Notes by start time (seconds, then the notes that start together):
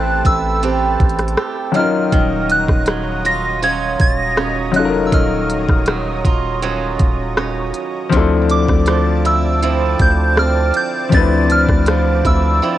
Already playing: A1 A3 C4 E4 G4 A4 B4 G5 A5 F#6
0.25 A1 B4 E6, kick, closed hi-hat
0.62 C4 G4 B4, closed hi-hat
1.00 A1, kick, closed hi-hat
1.09 closed hi-hat
1.19 cross-stick, closed hi-hat
1.28 closed hi-hat
1.37 G4, cross-stick
1.72 D#3 F#3 C#4 D#4 C#5 D#5 A#5 D#6, closed hi-hat
1.76 F4 A#4 F6
2.12 D#1 D#3, kick, closed hi-hat
2.50 F#6, closed hi-hat
2.69 D#1, kick, cross-stick
2.86 F#3, cross-stick, closed hi-hat
3.25 F4 A#6, closed hi-hat
3.62 F#3 C#4 F4 G#6, closed hi-hat
4.00 D#1 A#6, kick, closed hi-hat
4.37 C#4, cross-stick
4.72 F1 F#3 C#4 D#4, closed hi-hat
4.76 F4 A4 F#6
4.85 A#4
5.07 E6
5.12 D#1 D#3 F6, kick, closed hi-hat
5.50 closed hi-hat
5.69 D#1, kick, cross-stick
5.86 F#3, cross-stick, closed hi-hat
6.25 D#1 F4, kick, closed hi-hat
6.62 F#3 C#4 F4, closed hi-hat
6.99 D#1, kick, closed hi-hat
7.37 C#4, cross-stick
7.74 closed hi-hat
8.09 D2 D3 F3 C4 D4 D5 A5 D6, kick, closed hi-hat
8.15 E4 A4
8.50 D6, closed hi-hat
8.69 D2, kick, cross-stick
8.86 F3, cross-stick, closed hi-hat
9.25 E4 E6, closed hi-hat
9.62 F3 C4 E4, closed hi-hat
9.99 D2 G6, kick, closed hi-hat
10.37 C4 F6, cross-stick
10.74 G6, closed hi-hat
11.09 D2 D3 F3 C4 D4, kick, closed hi-hat
11.14 E4 B4 A6
11.50 F6, closed hi-hat
11.69 D2, kick, cross-stick
11.86 F3, cross-stick, closed hi-hat
12.25 D2 E4 E6, kick, closed hi-hat
12.62 F3 C4 E4